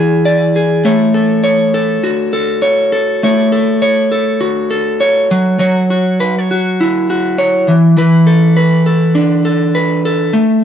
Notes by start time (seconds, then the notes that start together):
Already playing: E3 E4 G#4 D5
0.25 D5
0.56 G#4
0.85 A3 C#5
1.14 A4
1.44 C#5
1.74 A4
2.03 F#4
2.33 A4
2.62 C#5
2.92 A4
3.23 A3 C#5
3.52 A4
3.82 C#5
4.12 A4
4.41 F#4
4.71 A4
5.00 C#5
5.31 F#3
5.59 F#3 C#5
5.90 F#4
6.20 B4
6.38 C#5
6.51 F#4
6.80 E4
7.10 F#4
7.38 C#5
7.68 E3
7.97 E3 B4
8.27 A4
8.57 B4
8.86 A4
9.15 D4
9.45 A4
9.75 B4
10.05 A4
10.33 A3